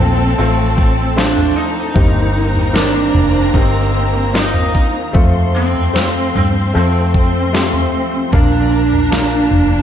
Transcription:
Already playing: grand piano A2 A3 C4 F4 A4, string section F3 A3 C4, lead electric guitar C4, violin section A4 A5
0.00 fingered electric bass A#1, floor tom
0.38 fingered electric bass A1, grand piano A3 C4 F4 A4, lead electric guitar C4
0.78 kick
1.16 grand piano A3 C4 F4 C5, lead electric guitar D4, snare
1.37 floor tom
1.56 lead electric guitar D#4
1.94 fingered electric bass G1, grand piano G2 A#3 C4 D#4 G4, string section D#3 A#3 C4, violin section A#4 A#5, kick, floor tom
2.55 floor tom
2.73 grand piano D#3 A#3 C4 A#4, lead electric guitar D4, snare
3.15 fingered electric bass F1, floor tom
3.54 fingered electric bass G1, grand piano A#3 C4 D#4 G4, lead electric guitar C4, kick
4.33 grand piano A#3 C4 D#4 F4, lead electric guitar D#4, snare
4.54 floor tom
4.75 kick
5.13 fingered electric bass F2, string section F3 A3 C4, grand piano A3 C4 F4 A4, violin section C5 C6, kick, floor tom
5.56 lead electric guitar C4
5.75 floor tom
5.93 grand piano A3 C4 F4 C5, snare
6.35 fingered electric bass G2, lead electric guitar C4, floor tom
6.73 fingered electric bass F2, grand piano A3 C4 F4 A4, lead electric guitar C4
7.14 violin section C5 C6, kick
7.53 grand piano A3 C4 F4 G4, snare
7.73 floor tom
8.32 fingered electric bass A#1, grand piano A#2 A#3 D4 F4 A#4, string section A#3 D4, lead electric guitar D4, violin section A#4 A#5, kick, floor tom
8.93 floor tom
9.11 grand piano A#3 D4 F4 A#4, snare
9.51 fingered electric bass F1, floor tom

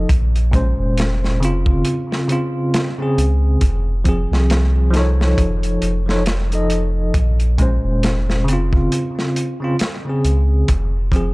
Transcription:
0.09 sub bass A#1, kick, closed hi-hat
0.36 closed hi-hat
0.51 tine electric piano A#2 G#3 C#4, kick, closed hi-hat
0.56 tine electric piano C5
0.79 sub bass F1
0.98 snare, closed hi-hat
1.24 snare
1.40 tine electric piano C#3 C4, closed hi-hat
1.45 tine electric piano F4
1.66 kick
1.85 closed hi-hat
2.12 snare
2.28 tine electric piano C#3 C4, closed hi-hat
2.32 tine electric piano F4
2.74 snare, closed hi-hat
2.98 tine electric piano C#3 C4
3.02 tine electric piano G#4
3.17 sub bass C#2, closed hi-hat
3.61 sub bass F1, kick, closed hi-hat
4.04 tine electric piano F3 C4, kick, closed hi-hat
4.09 tine electric piano G#4
4.31 sub bass C2, snare
4.50 snare, closed hi-hat
4.90 tine electric piano F3 D#4, closed hi-hat
4.95 tine electric piano A4, snare
4.99 tine electric piano C#5
5.21 snare
5.38 sub bass F1, kick, closed hi-hat
5.63 closed hi-hat
5.82 sub bass F1, closed hi-hat
6.06 tine electric piano F3 D#4 A4, snare
6.11 tine electric piano C#5
6.26 snare, closed hi-hat
6.50 tine electric piano F3 D#4 A4, closed hi-hat
6.55 tine electric piano D#5
6.70 closed hi-hat
7.14 sub bass A#1, kick, closed hi-hat
7.40 closed hi-hat
7.58 tine electric piano A#2 G#3 C#4, kick, closed hi-hat
7.62 tine electric piano C5
7.84 sub bass F1
8.03 snare, closed hi-hat
8.30 snare
8.44 tine electric piano C#3, closed hi-hat
8.49 tine electric piano C4 F4
8.73 kick
8.92 closed hi-hat
9.19 snare
9.36 closed hi-hat
9.60 tine electric piano C#3 C4
9.64 tine electric piano F4
9.79 snare, closed hi-hat
10.05 tine electric piano C#3 C4
10.09 tine electric piano G#4
10.24 sub bass C#2, closed hi-hat
10.68 sub bass F1, kick, closed hi-hat
11.12 tine electric piano F3 C4, kick, closed hi-hat
11.16 tine electric piano G#4

